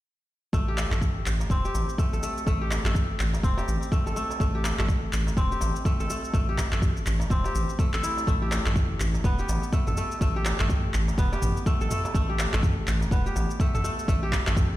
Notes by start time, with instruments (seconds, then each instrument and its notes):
0.53 analog synth bass A1, kora A3, kick, shaker
0.68 kora G4
0.78 clap, darbuka ka, darbuka tek, shaker
0.91 analog synth bass A1, kora A3, clap, darbuka dum, shaker
1.01 kick, darbuka dum, shaker
1.26 analog synth bass A1, clap, shaker
1.40 darbuka ka, shaker
1.50 analog synth bass E1, kora C4, kick, shaker
1.65 kora G4, shaker
1.74 analog synth bass A1, darbuka tek, shaker
1.89 shaker
1.98 kora A3, kick, shaker
2.13 analog synth bass A1, kora A4, shaker
2.23 kora A3, shaker
2.37 shaker
2.47 analog synth bass A1, kora A3, kick, shaker
2.61 kora G4
2.70 clap, darbuka ka, darbuka tek, shaker
2.84 analog synth bass A1, kora A3, clap, darbuka dum, shaker
2.95 kick, darbuka dum, shaker
3.19 analog synth bass A1, clap, shaker
3.34 darbuka ka, shaker
3.43 analog synth bass E1, kora C4, kick, shaker
3.58 kora G4, darbuka tek, shaker
3.68 analog synth bass A1, shaker
3.83 shaker
3.92 kora A3, kick, shaker
4.06 analog synth bass A1, kora A4, shaker
4.16 kora A3, shaker
4.31 darbuka ka, shaker
4.40 analog synth bass A1, kora A3, kick, shaker
4.55 kora G4
4.64 clap, darbuka ka, darbuka tek, shaker
4.79 analog synth bass A1, kora A3, clap, darbuka dum, shaker
4.88 kick, darbuka dum, shaker
5.13 analog synth bass A1, clap, shaker
5.27 darbuka ka, shaker
5.37 analog synth bass E1, kora C4, kick, shaker
5.52 kora G4, shaker
5.61 analog synth bass A1, darbuka tek, shaker
5.76 shaker
5.85 kora A3, kick, shaker
6.00 analog synth bass A1, kora A4, shaker
6.10 kora A3, shaker
6.24 shaker
6.34 analog synth bass A1, kora A3, kick, shaker
6.49 kora G4
6.58 kick, clap, darbuka ka, darbuka tek, shaker
6.72 analog synth bass A1, kora A3, clap, darbuka dum, shaker
6.82 kick, darbuka dum, shaker
6.97 shaker
7.06 analog synth bass A1, clap, shaker
7.20 darbuka ka, shaker
7.30 analog synth bass E1, kora C4, kick, darbuka tek, shaker
7.44 kora G4, darbuka tek, shaker
7.55 analog synth bass A1, shaker
7.69 shaker
7.79 kora A3, kick, shaker
7.93 analog synth bass A1, kora A4, clap, shaker
8.03 kora E4, shaker
8.18 darbuka ka, shaker
8.27 analog synth bass A1, kora A3, kick, shaker
8.42 kora G4
8.51 clap, darbuka ka, darbuka tek, shaker
8.66 analog synth bass A1, kora A3, clap, darbuka dum, shaker
8.76 kick, mid tom, darbuka dum, shaker
9.00 analog synth bass A1, clap, shaker
9.14 darbuka ka, shaker
9.24 analog synth bass E1, kora B3, kick, shaker
9.39 kora G4, shaker
9.49 analog synth bass A1, darbuka tek, shaker
9.63 shaker
9.73 kora A3, kick, shaker
9.87 analog synth bass A1, kora A4, mid tom, shaker
9.97 kora A3, shaker
10.12 shaker
10.21 analog synth bass A1, kora A3, kick, shaker
10.36 kora G4
10.45 clap, darbuka ka, darbuka tek, shaker
10.60 analog synth bass A1, kora A3, clap, darbuka dum, shaker
10.69 kick, mid tom, darbuka dum, shaker
10.94 analog synth bass A1, clap, shaker
11.08 darbuka ka, shaker
11.18 analog synth bass E1, kora B3, kick, shaker
11.33 kora G4, darbuka tek, shaker
11.42 analog synth bass A1, mid tom, shaker
11.57 shaker
11.66 kora A3, kick, shaker
11.81 analog synth bass A1, kora A4, shaker
11.91 kora A3, mid tom, shaker
12.05 darbuka ka, shaker
12.15 analog synth bass A1, kora A3, kick, shaker
12.29 kora G4
12.39 clap, darbuka ka, darbuka tek, shaker
12.53 analog synth bass A1, kora A3, clap, darbuka dum, shaker
12.63 kick, mid tom, darbuka dum, shaker
12.87 analog synth bass A1, clap, shaker
13.01 darbuka ka, shaker
13.11 analog synth bass E1, kora B3, kick, shaker
13.26 kora G4, shaker
13.36 analog synth bass A1, darbuka tek, shaker
13.51 shaker
13.60 kora A3, kick, shaker
13.74 analog synth bass A1, kora A4, mid tom, shaker
13.84 kora A3, shaker
13.99 shaker
14.08 analog synth bass A1, kora A3, kick, shaker
14.23 kora G4
14.32 kick, clap, darbuka ka, darbuka tek, shaker
14.47 analog synth bass A1, kora A3, clap, darbuka ka, darbuka dum, shaker
14.56 kick, mid tom, darbuka dum, shaker